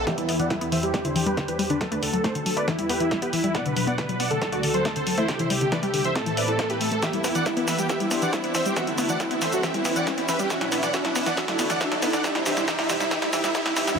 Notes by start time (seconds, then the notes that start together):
0.07 E2 E3 B3 G4 B4 E5, kick, snare, closed hi-hat, riser
0.18 G3 E4, closed hi-hat
0.29 B3 E4, open hi-hat
0.39 E3 D5 F#5, closed hi-hat
0.50 G3 E4, kick, snare, closed hi-hat
0.61 B3 E4, closed hi-hat
0.72 E3 C5 E5, open hi-hat
0.83 G3 G4, closed hi-hat
0.94 E3 G3 D4 G4 C5, kick, snare, closed hi-hat
1.05 D3 E4 C5, closed hi-hat
1.15 E3 G4, open hi-hat
1.26 G3 G4 B4, closed hi-hat
1.37 D3 G4, kick, snare, closed hi-hat
1.48 E3 G4 B4, closed hi-hat
1.59 G3 G4, open hi-hat
1.70 D3 D4 B4, closed hi-hat
1.81 D2 D3 F#3 A3 F#4 A4, kick, snare, closed hi-hat
1.91 A3 D4 B4, closed hi-hat
2.02 D3 A4, open hi-hat
2.13 F#3 A4, closed hi-hat
2.24 A3 A4 C5, kick, snare, closed hi-hat
2.35 D3 A4, closed hi-hat
2.46 F#3 A4, open hi-hat
2.57 A3 B4 D5, closed hi-hat
2.68 E2 E3 B3 E4 G4 B4, kick, snare, closed hi-hat
2.78 G3 E4, closed hi-hat
2.89 B3 G4 B4, open hi-hat
3.00 E3 E4, closed hi-hat
3.11 G3 E4, kick, snare, closed hi-hat
3.22 B3 G4 B4, closed hi-hat
3.33 E3 E4, open hi-hat
3.44 G3 E4, closed hi-hat
3.55 B2 F#3 B3 D4 D5 F#5, kick, snare, closed hi-hat
3.65 D3 B4, closed hi-hat
3.76 F#3 B4, open hi-hat
3.87 B3 D5 F#5, closed hi-hat
3.98 D3 B4, kick, snare, closed hi-hat
4.09 F#3 B4, closed hi-hat
4.19 B3 D5 F#5, open hi-hat
4.30 D3 A4, closed hi-hat
4.41 D2 D3 F#3 A3 F#4 A4, kick, snare, closed hi-hat
4.52 A3 F#4 D5, closed hi-hat
4.63 D3 A4, open hi-hat
4.74 F#3 A4 C5, closed hi-hat
4.85 A3 A4, kick, snare, closed hi-hat
4.96 D3 A4 C5, closed hi-hat
5.07 F#3 A4, open hi-hat
5.18 A3 E4 C5, closed hi-hat
5.28 C2 C3 D3 D4 G4 E5, kick, snare, closed hi-hat
5.39 E3 E4 C5, closed hi-hat
5.50 G3 G4, open hi-hat
5.61 D3 G4, closed hi-hat
5.72 E3 B4 D5, kick, snare, closed hi-hat
5.83 G3 G4, closed hi-hat
5.94 D3 G4, open hi-hat
6.05 E3 C5 E5, closed hi-hat
6.15 A2 E3 C4 A4, kick, snare, closed hi-hat
6.26 E3 A4, closed hi-hat
6.37 B4 D5 E5, open hi-hat
6.48 E4 A4, closed hi-hat
6.59 A4 C5, kick, snare, closed hi-hat
6.70 E4 G4 B4, closed hi-hat
6.81 A3 A4, open hi-hat
6.91 A3 A4, closed hi-hat
7.02 E2 E3 B3 G4 B4 E5, kick, snare, closed hi-hat, shaker
7.13 G3 E4, closed hi-hat
7.24 B3 E4, snare, open hi-hat, shaker
7.35 E3 D5 F#5, closed hi-hat, shaker
7.46 G3 E4, kick, snare, closed hi-hat, shaker
7.57 B3 E4, closed hi-hat
7.68 E3 B4 E5, snare, open hi-hat, shaker
7.78 G3 G4, closed hi-hat, shaker
7.89 E3 D4 G4 C5 E5, kick, snare, closed hi-hat, shaker
8.00 G3 E4, closed hi-hat
8.11 B3 E4, snare, open hi-hat, shaker
8.22 E3 D5 F#5, closed hi-hat, shaker
8.33 G3 E4, kick, snare, closed hi-hat, shaker
8.44 B3 E4, closed hi-hat
8.55 E3 C5 E5, snare, open hi-hat, shaker
8.66 G3 G4, closed hi-hat, shaker
8.76 D2 D3 E3 A3 F#4 A4 E5, kick, snare, closed hi-hat, shaker
8.87 F#3 E4, closed hi-hat
8.98 B3 E4, snare, open hi-hat, shaker
9.09 E3 D5 F#5, closed hi-hat, shaker
9.20 F#3 E4, kick, snare, closed hi-hat, shaker
9.31 B3 E4, closed hi-hat
9.42 E3 C5 E5, snare, open hi-hat, shaker
9.52 F#3 F#4, closed hi-hat, shaker
9.63 E2 E3 B3 G4 B4 E5, kick, snare, closed hi-hat, shaker
9.74 G3 E4, closed hi-hat
9.85 B3 E4, snare, open hi-hat, shaker
9.96 E3 D5 F#5, closed hi-hat, shaker
10.07 G3 E4, kick, snare, closed hi-hat, shaker
10.18 B3 E4, closed hi-hat
10.29 E3 B4 E5, snare, open hi-hat, shaker
10.39 G3 G4, closed hi-hat, shaker
10.50 B2 E3 F#3 D4 F#4 E5 F#5, kick, snare, closed hi-hat, shaker
10.61 F#3 E4, snare, closed hi-hat
10.72 B3 E4, snare, open hi-hat, shaker
10.83 E3 D5 F#5, snare, closed hi-hat, shaker
10.94 E3 F#4 E5, kick, snare, closed hi-hat, shaker
11.05 F#3 E4, snare, closed hi-hat
11.16 B3 E4, snare, open hi-hat, shaker
11.26 E3 D5 F#5, snare, closed hi-hat, shaker
11.37 D2 D3 E3 A3 F#4 A4 E5, kick, snare, closed hi-hat, shaker
11.48 F#3 E4, snare, closed hi-hat
11.59 B3 E4, snare, open hi-hat, shaker
11.70 E3 D5 F#5, snare, closed hi-hat, shaker
11.81 E3 F#4 E5, kick, snare, closed hi-hat, shaker
11.92 F#3 E4, snare, closed hi-hat
12.02 B3 E4, snare, open hi-hat, shaker
12.13 E3 D5 F#5, snare, closed hi-hat, shaker
12.24 C3 E3 G3 D4 E4 G4 C5 E5, kick, snare, closed hi-hat, shaker
12.35 G3 E4, snare, closed hi-hat
12.46 E3 G4 E5, snare, open hi-hat, shaker
12.57 G3 E4, snare, closed hi-hat, shaker
12.68 E3 G4 E5, kick, snare, closed hi-hat, shaker
12.79 G3 E4, snare, open hi-hat
12.89 E3 G4 E5, snare, open hi-hat, shaker
13.00 G3 E4, snare, closed hi-hat, shaker
13.11 A2 E3 A3 C4 G4 E5, kick, snare, closed hi-hat, shaker
13.22 G3 E4, snare, closed hi-hat
13.33 E3 G4 E5, snare, open hi-hat, shaker
13.44 G3 E4, snare, closed hi-hat, shaker
13.55 E3 G4 E5, kick, snare, closed hi-hat, shaker
13.66 G3 E4, snare, closed hi-hat
13.76 E3 G4 E5, snare, open hi-hat, shaker
13.87 G3 E4, snare, closed hi-hat, shaker